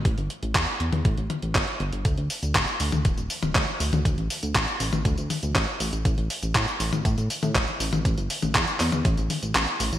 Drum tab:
HH |xxxxxxxxxxxxxxxx|xxoxxxoxxxoxxxox|xxoxxxoxxxoxoxox|xxoxxxoxxxoxxxox|
TB |----------------|x-xxxxxxxxxxx-xx|x-xxxxxxxxxxx-xx|x-xxxxxxxxxxx-xx|
CP |----x-------x---|----x-------x---|----x-------x---|----x-------x---|
T1 |-------o--o-----|-------o---o---o|-------o--o-----|-------o---o---o|
BD |o---o---o---o---|o---o---o---o---|o---o---o---o---|o---o---o---o---|

HH |xxoxxxoxxxoxoxox|
TB |xxxxxxxxxxxxx-xx|
CP |----x-x-----x---|
T1 |---o---o--o-----|
BD |o---o---o-------|